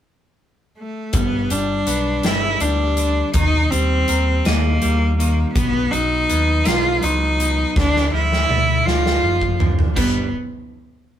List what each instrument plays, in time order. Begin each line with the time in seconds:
0.78 cello A3
1.13 picked electric bass G1, clean electric guitar G2, cello B3, kick, closed hi-hat
1.50 picked electric bass G1, clean electric guitar G3, cello D4, closed hi-hat
1.87 picked electric bass B1, clean electric guitar B3, closed hi-hat
2.23 picked electric bass G1, clean electric guitar D4, cello E4, snare, closed hi-hat
2.60 picked electric bass D2, clean electric guitar G3, cello D4, closed hi-hat
2.97 clean electric guitar D3, closed hi-hat
3.34 picked electric bass D#2, clean electric guitar D#3, cello D#4, kick, closed hi-hat
3.71 picked electric bass D#2, clean electric guitar G3, cello C4, closed hi-hat
4.08 picked electric bass D#2, clean electric guitar A#3, closed hi-hat
4.45 picked electric bass D#2, cello A#3, clean electric guitar D#4, snare, closed hi-hat
4.82 picked electric bass D#2, clean electric guitar G3, closed hi-hat
5.18 clean electric guitar D#3, cello A#3, closed hi-hat
5.53 picked electric bass B1, clean electric guitar B2, cello B3, kick, closed hi-hat
5.91 picked electric bass B1, clean electric guitar F#3, cello D#4, closed hi-hat
6.29 picked electric bass D#2, clean electric guitar B3, closed hi-hat
6.64 picked electric bass B1, clean electric guitar D#4, cello F4, snare, closed hi-hat
7.01 picked electric bass C#2, clean electric guitar F#3, cello D#4, closed hi-hat
7.39 clean electric guitar B2, closed hi-hat
7.76 picked electric bass D2, clean electric guitar D3, cello D4, kick, snare
7.96 snare
8.13 picked electric bass D2, clean electric guitar F3, cello E4
8.32 snare
8.49 picked electric bass D2, clean electric guitar A3, mid tom
8.86 picked electric bass D2, clean electric guitar D4, cello F4, snare
9.06 snare
9.23 picked electric bass F#1, clean electric guitar F3
9.42 kick
9.60 clean electric guitar D3, floor tom
9.79 floor tom
9.95 picked electric bass G1, clean electric guitar G2 D3 G3 B3 D4, cello B3, kick, splash